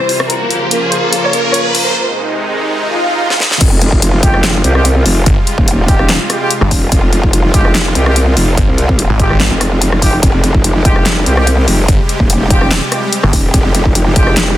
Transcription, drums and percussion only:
0.09 open hi-hat medium
0.20 cross-stick medium
0.30 closed hi-hat medium
0.51 closed hi-hat soft
0.71 closed hi-hat medium
0.92 closed hi-hat medium
1.13 closed hi-hat medium
1.33 closed hi-hat medium
1.54 closed hi-hat medium
1.75 open hi-hat medium
3.30 snare medium
3.40 snare medium
3.51 snare medium
3.61 kick loud
3.61 closed hi-hat medium
3.61 crash loud
3.82 closed hi-hat medium
3.92 kick medium
4.02 closed hi-hat medium
4.23 kick loud
4.23 closed hi-hat medium
4.34 cross-stick medium
4.44 snare loud
4.44 clap medium
4.44 closed hi-hat medium
4.64 closed hi-hat medium
4.75 cross-stick medium
4.85 closed hi-hat medium
5.06 open hi-hat loud
5.26 kick loud
5.26 closed hi-hat medium
5.47 closed hi-hat medium
5.58 kick medium
5.68 closed hi-hat medium
5.88 kick loud
5.88 closed hi-hat medium
5.99 cross-stick medium
6.09 snare loud
6.09 clap medium
6.09 closed hi-hat medium
6.30 cross-stick soft
6.30 closed hi-hat medium
6.51 closed hi-hat medium
6.61 cross-stick soft
6.71 kick medium
6.71 open hi-hat medium
6.92 kick loud
6.92 closed hi-hat medium
7.13 closed hi-hat medium
7.23 kick medium
7.33 closed hi-hat medium
7.54 kick loud
7.54 closed hi-hat medium
7.65 cross-stick medium
7.75 snare loud
7.75 clap medium
7.75 closed hi-hat medium
7.95 closed hi-hat medium
8.06 cross-stick medium
8.16 closed hi-hat medium
8.37 open hi-hat medium
8.57 kick loud
8.57 closed hi-hat medium
8.78 closed hi-hat soft
8.89 kick medium
8.99 closed hi-hat medium
9.20 kick loud
9.20 closed hi-hat medium
9.30 cross-stick medium
9.40 snare loud
9.40 clap medium
9.40 closed hi-hat medium
9.61 cross-stick medium
9.61 closed hi-hat medium
9.82 closed hi-hat medium
9.92 cross-stick medium
10.02 kick medium
10.02 open hi-hat medium
10.23 kick loud
10.23 closed hi-hat medium
10.44 closed hi-hat soft
10.54 kick medium
10.64 closed hi-hat medium
10.85 kick loud
10.85 closed hi-hat medium
10.96 cross-stick medium
11.06 snare loud
11.06 clap medium
11.06 closed hi-hat medium
11.26 closed hi-hat medium
11.37 cross-stick medium
11.47 closed hi-hat medium
11.68 open hi-hat medium
11.88 kick loud
11.88 closed hi-hat medium
12.09 closed hi-hat medium
12.20 kick medium
12.30 closed hi-hat medium
12.50 kick loud
12.50 closed hi-hat medium
12.61 cross-stick medium
12.71 snare loud
12.71 clap medium
12.71 closed hi-hat medium
12.92 cross-stick medium
12.92 closed hi-hat medium
13.13 closed hi-hat medium
13.23 cross-stick medium
13.33 kick medium
13.33 open hi-hat loud
13.54 kick loud
13.54 closed hi-hat medium
13.75 closed hi-hat medium
13.86 kick medium
13.95 closed hi-hat medium
14.16 kick loud
14.16 closed hi-hat medium
14.27 cross-stick medium
14.37 snare loud
14.37 clap medium
14.37 closed hi-hat medium

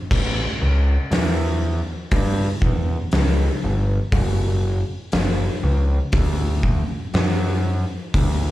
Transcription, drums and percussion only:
0.11 kick loud
0.11 crash loud
1.12 snare loud
1.12 open hi-hat medium
2.11 kick loud
2.11 open hi-hat medium
2.62 kick medium
3.12 snare loud
3.12 open hi-hat medium
4.12 kick loud
4.12 open hi-hat medium
5.12 snare loud
5.12 open hi-hat medium
6.12 kick loud
6.12 open hi-hat medium
6.63 kick medium
7.14 snare loud
7.14 open hi-hat medium
8.14 kick loud
8.14 open hi-hat medium

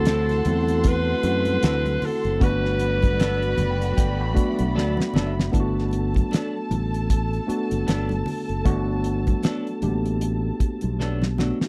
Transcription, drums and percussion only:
0.05 snare loud
0.05 closed hi-hat medium
0.05 muted conga soft
0.29 snare soft
0.29 closed hi-hat soft
0.45 closed hi-hat medium
0.45 muted conga soft
0.45 high conga medium
0.45 low conga medium
0.68 closed hi-hat medium
0.84 kick medium
0.84 closed hi-hat medium
0.84 muted conga soft
1.23 closed hi-hat medium
1.45 closed hi-hat medium
1.45 high conga medium
1.63 snare loud
1.63 closed hi-hat loud
1.86 closed hi-hat soft
1.86 high conga medium
2.02 open hi-hat medium
2.02 muted conga soft
2.02 low conga medium
2.25 closed hi-hat soft
2.41 kick loud
2.41 closed hi-hat medium
2.41 muted conga soft
2.41 low conga medium
2.65 snare soft
2.79 closed hi-hat medium
2.79 muted conga soft
3.03 kick medium
3.03 closed hi-hat soft
3.03 high conga medium
3.20 snare loud
3.20 closed hi-hat medium
3.42 closed hi-hat soft
3.58 closed hi-hat medium
3.58 high conga medium
3.58 low conga medium
3.82 closed hi-hat medium
3.97 kick medium
3.97 closed hi-hat medium
3.97 muted conga soft
4.37 kick medium
4.37 closed hi-hat medium
4.37 muted conga soft
4.59 closed hi-hat medium
4.59 high conga medium
4.78 snare medium
4.97 snare medium
4.97 high conga medium
5.14 snare loud
5.14 muted conga soft
5.14 low conga medium
5.40 snare medium
5.53 kick loud
5.53 closed hi-hat medium
5.53 muted conga soft
5.53 low conga medium
5.79 snare soft
5.91 closed hi-hat medium
5.91 muted conga soft
6.14 kick medium
6.14 closed hi-hat soft
6.14 high conga medium
6.31 snare loud
6.31 closed hi-hat medium
6.31 muted conga soft
6.71 closed hi-hat medium
6.71 muted conga soft
6.71 high conga medium
6.71 low conga medium
6.94 closed hi-hat medium
7.10 kick medium
7.10 closed hi-hat medium
7.10 muted conga soft
7.33 closed hi-hat soft
7.49 closed hi-hat medium
7.49 muted conga soft
7.71 closed hi-hat medium
7.71 high conga medium
7.88 snare loud
7.88 closed hi-hat medium
7.88 muted conga soft
8.09 closed hi-hat soft
8.09 high conga medium
8.26 open hi-hat medium
8.26 muted conga soft
8.26 low conga medium
8.49 closed hi-hat soft
8.65 kick loud
8.65 closed hi-hat medium
8.65 low conga medium
9.04 closed hi-hat medium
9.04 muted conga soft
9.27 kick medium
9.27 closed hi-hat soft
9.27 high conga medium
9.43 snare loud
9.43 closed hi-hat medium
9.43 muted conga soft
9.67 closed hi-hat soft
9.82 closed hi-hat medium
9.82 muted conga soft
9.82 high conga medium
9.82 low conga medium
10.06 closed hi-hat medium
10.21 closed hi-hat medium
10.21 muted conga soft
10.60 kick medium
10.60 closed hi-hat medium
10.81 closed hi-hat medium
10.81 high conga medium
11.00 snare medium
11.22 snare medium
11.22 high conga medium
11.38 snare medium
11.38 muted conga soft
11.38 low conga medium
11.61 snare medium

